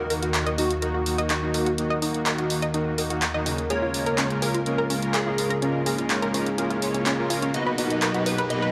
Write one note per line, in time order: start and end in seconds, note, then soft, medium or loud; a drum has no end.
0.00 3.66 D#2 medium
0.00 3.66 D#3 medium
0.00 3.66 F#4 medium
0.00 0.49 A#4 loud
0.00 5.58 A#4 loud
0.00 riser medium
0.10 0.21 D#3 medium
0.10 0.21 A#3 medium
0.10 0.21 D#4 medium
0.10 0.21 F#4 loud
0.10 0.20 A#4 medium
0.10 open hi-hat loud
0.22 0.44 D#3 medium
0.22 0.44 A#3 medium
0.22 0.44 D#4 medium
0.22 0.29 F#4 medium
0.22 0.44 F#4 medium
0.22 closed hi-hat medium
0.34 clap loud
0.34 closed hi-hat medium
0.46 0.56 D#3 medium
0.46 0.56 A#3 medium
0.46 0.56 D#4 medium
0.46 0.56 F#4 medium
0.46 0.56 D#5 loud
0.46 closed hi-hat soft
0.58 0.71 D#3 medium
0.58 0.71 A#3 medium
0.58 0.62 D#4 medium
0.58 0.71 D#4 medium
0.58 1.21 F#4 loud
0.58 0.71 F#4 loud
0.58 open hi-hat loud
0.71 closed hi-hat medium
0.82 1.02 D#3 medium
0.82 1.02 A#3 medium
0.82 1.02 D#4 medium
0.82 1.02 F#4 loud
0.82 0.92 A#4 medium
0.82 closed hi-hat medium
0.94 1.01 F#4 medium
1.06 1.17 D#3 medium
1.06 1.17 A#3 medium
1.06 1.17 D#4 medium
1.06 1.17 F#4 medium
1.06 open hi-hat loud
1.18 1.31 D#3 loud
1.18 1.31 A#3 medium
1.18 1.31 D#4 medium
1.18 1.31 F#4 loud
1.18 1.28 D#5 loud
1.18 closed hi-hat medium
1.30 1.34 D#4 medium
1.30 1.74 F#4 medium
1.30 clap loud
1.30 closed hi-hat medium
1.42 1.52 D#3 medium
1.42 1.52 A#3 medium
1.42 1.52 D#4 medium
1.42 1.52 F#4 loud
1.54 1.67 D#3 loud
1.54 1.67 A#3 medium
1.54 1.67 D#4 medium
1.54 1.67 F#4 loud
1.54 1.64 A#4 medium
1.54 open hi-hat loud
1.66 1.73 F#4 medium
1.66 closed hi-hat medium
1.78 1.98 D#3 medium
1.78 1.98 A#3 medium
1.78 1.98 D#4 medium
1.78 1.98 F#4 loud
1.78 closed hi-hat medium
1.90 2.00 D#5 loud
2.02 2.13 D#3 medium
2.02 2.13 A#3 medium
2.02 2.13 D#4 medium
2.02 2.06 D#4 medium
2.02 2.13 F#4 loud
2.02 open hi-hat loud
2.14 2.35 D#3 medium
2.14 2.35 A#3 medium
2.14 2.35 D#4 medium
2.14 2.36 F#4 loud
2.14 closed hi-hat medium
2.26 2.36 A#4 medium
2.26 clap loud
2.26 closed hi-hat medium
2.38 2.48 D#3 medium
2.38 2.48 A#3 medium
2.38 2.48 D#4 medium
2.38 2.48 F#4 medium
2.38 2.45 F#4 medium
2.38 closed hi-hat soft
2.50 2.63 D#3 loud
2.50 2.63 A#3 medium
2.50 2.63 D#4 medium
2.50 2.63 F#4 loud
2.50 open hi-hat loud
2.62 2.72 D#5 loud
2.62 closed hi-hat medium
2.74 2.94 D#3 medium
2.74 2.94 A#3 medium
2.74 2.94 D#4 medium
2.74 2.78 D#4 medium
2.74 2.94 F#4 loud
2.74 closed hi-hat medium
2.98 3.09 D#3 medium
2.98 3.09 A#3 medium
2.98 3.09 D#4 medium
2.98 3.09 F#4 loud
2.98 3.08 A#4 medium
2.98 open hi-hat loud
3.10 3.23 D#3 loud
3.10 3.23 A#3 medium
3.10 3.23 D#4 medium
3.10 3.23 F#4 loud
3.10 3.17 F#4 medium
3.10 closed hi-hat medium
3.22 clap loud
3.22 closed hi-hat medium
3.34 3.44 D#3 medium
3.34 3.44 A#3 medium
3.34 3.44 D#4 medium
3.34 3.44 F#4 loud
3.34 3.44 D#5 loud
3.46 3.59 C#3 loud
3.46 3.59 A#3 medium
3.46 3.50 D#4 medium
3.46 3.59 D#4 medium
3.46 3.59 F#4 loud
3.46 open hi-hat loud
3.58 closed hi-hat medium
3.70 7.50 C#3 medium
3.70 3.90 C#3 medium
3.70 7.50 G#3 medium
3.70 3.90 G#3 medium
3.70 3.90 A#3 medium
3.70 3.90 C#4 medium
3.70 7.50 F4 medium
3.70 3.90 F4 medium
3.70 3.80 G#4 medium
3.70 3.90 A#4 loud
3.70 4.33 C#5 loud
3.70 closed hi-hat medium
3.82 3.89 F4 medium
3.94 4.05 C#3 medium
3.94 4.05 G#3 medium
3.94 4.05 A#3 medium
3.94 4.05 C#4 medium
3.94 4.05 F4 medium
3.94 4.05 A#4 loud
3.94 open hi-hat loud
4.06 4.27 C#3 medium
4.06 4.28 G#3 medium
4.06 4.27 A#3 medium
4.06 4.27 C#4 medium
4.06 4.27 F4 medium
4.06 4.27 A#4 medium
4.06 4.16 A#4 loud
4.06 closed hi-hat soft
4.18 4.22 C#4 medium
4.18 clap loud
4.18 closed hi-hat medium
4.30 4.40 C#3 medium
4.30 4.40 G#3 medium
4.30 4.40 A#3 medium
4.30 4.40 C#4 medium
4.30 4.40 F4 medium
4.30 4.40 A#4 medium
4.30 closed hi-hat soft
4.42 4.55 C#3 loud
4.42 4.55 G#3 medium
4.42 4.55 A#3 medium
4.42 4.55 C#4 medium
4.42 4.55 F4 medium
4.42 4.52 G#4 medium
4.42 4.55 A#4 loud
4.42 5.16 A#4 loud
4.42 open hi-hat loud
4.54 4.61 F4 medium
4.54 closed hi-hat soft
4.66 4.86 C#3 medium
4.66 4.86 G#3 medium
4.66 4.86 A#3 medium
4.66 4.86 C#4 medium
4.66 4.86 F4 medium
4.66 4.86 A#4 loud
4.66 closed hi-hat medium
4.78 4.88 A#4 loud
4.90 5.01 C#3 medium
4.90 5.01 G#3 medium
4.90 5.01 A#3 medium
4.90 4.94 C#4 medium
4.90 5.01 C#4 medium
4.90 5.01 F4 medium
4.90 5.01 A#4 medium
4.90 open hi-hat loud
5.02 5.15 C#3 loud
5.02 5.15 G#3 medium
5.02 5.15 A#3 medium
5.02 5.15 C#4 medium
5.02 5.15 F4 medium
5.02 5.15 A#4 loud
5.02 closed hi-hat soft
5.14 5.57 G#4 medium
5.14 5.24 G#4 medium
5.14 clap loud
5.14 closed hi-hat medium
5.26 5.36 C#3 medium
5.26 5.36 G#3 medium
5.26 5.36 A#3 medium
5.26 5.36 C#4 medium
5.26 5.36 F4 medium
5.26 5.33 F4 medium
5.26 5.36 A#4 loud
5.38 5.51 C#3 loud
5.38 5.51 G#3 medium
5.38 5.51 A#3 medium
5.38 5.51 C#4 medium
5.38 5.51 F4 medium
5.38 5.51 A#4 loud
5.38 open hi-hat loud
5.50 5.60 A#4 loud
5.50 closed hi-hat soft
5.62 5.82 C#3 medium
5.62 5.82 G#3 medium
5.62 5.82 A#3 medium
5.62 5.82 C#4 medium
5.62 5.66 C#4 medium
5.62 5.82 F4 medium
5.62 7.52 G#4 loud
5.62 5.82 A#4 loud
5.62 closed hi-hat medium
5.86 5.97 C#3 medium
5.86 5.97 G#3 medium
5.86 5.97 A#3 medium
5.86 5.97 C#4 medium
5.86 5.97 F4 medium
5.86 5.96 G#4 medium
5.86 5.97 A#4 loud
5.86 open hi-hat loud
5.98 6.19 C#3 medium
5.98 6.19 G#3 medium
5.98 6.19 A#3 medium
5.98 6.19 C#4 medium
5.98 6.19 F4 medium
5.98 6.05 F4 medium
5.98 6.19 A#4 loud
5.98 closed hi-hat soft
6.10 clap loud
6.10 closed hi-hat medium
6.22 6.32 C#3 medium
6.22 6.32 G#3 medium
6.22 6.32 A#3 medium
6.22 6.32 C#4 medium
6.22 6.32 F4 medium
6.22 6.32 A#4 medium
6.22 6.32 A#4 loud
6.22 closed hi-hat soft
6.34 6.47 C#3 loud
6.34 6.47 G#3 medium
6.34 6.47 A#3 medium
6.34 6.47 C#4 medium
6.34 6.38 C#4 medium
6.34 6.47 F4 medium
6.34 6.47 A#4 loud
6.34 open hi-hat loud
6.46 closed hi-hat soft
6.58 6.78 C#3 medium
6.58 6.78 G#3 medium
6.58 6.78 A#3 medium
6.58 6.78 C#4 medium
6.58 6.78 F4 medium
6.58 6.68 G#4 medium
6.58 6.78 A#4 medium
6.58 closed hi-hat medium
6.70 6.77 F4 medium
6.70 closed hi-hat soft
6.82 7.15 C#3 medium
6.82 7.15 G#3 medium
6.82 7.15 A#3 medium
6.82 7.15 C#4 medium
6.82 7.15 F4 medium
6.82 7.15 C#5 loud
6.82 open hi-hat loud
6.94 6.98 C#4 medium
6.94 closed hi-hat soft
7.06 7.10 C#4 loud
7.06 clap loud
7.06 closed hi-hat medium
7.18 7.28 C#3 medium
7.18 7.28 G#3 medium
7.18 7.28 A#3 medium
7.18 7.28 C#4 medium
7.18 7.28 F4 medium
7.18 7.28 A#4 medium
7.30 7.51 G#3 medium
7.30 7.51 A#3 medium
7.30 7.51 C#4 medium
7.30 7.51 F4 medium
7.30 7.34 F4 medium
7.30 7.51 A#4 medium
7.30 open hi-hat loud
7.42 7.46 C#4 medium
7.42 closed hi-hat soft
7.54 7.74 B2 medium
7.54 8.72 B2 medium
7.54 8.72 F#3 medium
7.54 7.74 A#3 medium
7.54 7.74 B3 medium
7.54 7.74 D#4 medium
7.54 8.72 D#4 medium
7.54 7.74 F#4 medium
7.54 8.72 A#4 medium
7.54 7.74 B4 medium
7.54 8.26 D#5 loud
7.54 closed hi-hat medium
7.66 7.76 B4 medium
7.78 7.89 B2 medium
7.78 7.89 A#3 medium
7.78 7.89 B3 medium
7.78 7.89 D#4 medium
7.78 7.82 D#4 medium
7.78 7.89 F#4 medium
7.78 7.89 B4 medium
7.78 open hi-hat loud
7.90 8.11 B2 medium
7.90 8.11 A#3 medium
7.90 8.11 B3 medium
7.90 8.11 D#4 medium
7.90 8.11 F#4 medium
7.90 8.11 B4 medium
7.90 closed hi-hat soft
8.02 8.12 A#4 medium
8.02 clap loud
8.02 closed hi-hat medium
8.14 8.24 B2 medium
8.14 8.24 A#3 medium
8.14 8.24 B3 medium
8.14 8.24 D#4 medium
8.14 8.24 F#4 medium
8.14 8.21 F#4 medium
8.14 8.24 B4 medium
8.14 closed hi-hat soft
8.26 8.39 B2 medium
8.26 8.39 A#3 medium
8.26 8.39 B3 medium
8.26 8.39 D#4 medium
8.26 8.39 F#4 medium
8.26 8.39 B4 loud
8.26 8.48 B4 medium
8.26 open hi-hat loud
8.38 8.48 B4 medium
8.38 closed hi-hat soft
8.50 8.70 B2 medium
8.50 8.70 A#3 medium
8.50 8.70 B3 medium
8.50 8.70 D#4 medium
8.50 8.70 F#4 medium
8.50 8.70 B4 medium
8.50 8.72 D#5 loud
8.50 closed hi-hat medium
8.62 8.72 B4 medium